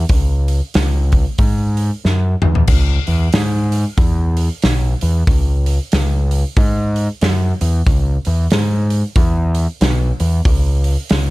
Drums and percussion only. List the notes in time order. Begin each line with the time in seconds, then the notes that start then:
0.09 kick, open hi-hat
0.48 open hi-hat
0.74 snare, open hi-hat
1.12 kick, open hi-hat
1.38 kick, open hi-hat
1.77 open hi-hat
2.05 snare
2.42 mid tom
2.55 floor tom
2.68 kick, open hi-hat, crash
3.07 open hi-hat
3.32 snare, open hi-hat
3.72 open hi-hat
3.98 kick, open hi-hat
4.37 open hi-hat
4.62 snare, open hi-hat
5.01 open hi-hat
5.27 kick, open hi-hat
5.66 open hi-hat
5.92 snare, open hi-hat
6.31 open hi-hat
6.57 kick, open hi-hat
6.96 open hi-hat
7.21 snare, open hi-hat
7.61 open hi-hat
7.87 kick, open hi-hat
8.25 open hi-hat
8.50 snare, open hi-hat
8.90 open hi-hat
9.16 kick, open hi-hat
9.55 open hi-hat
9.81 snare, open hi-hat
10.20 open hi-hat
10.45 kick, open hi-hat
10.84 open hi-hat
11.09 snare, open hi-hat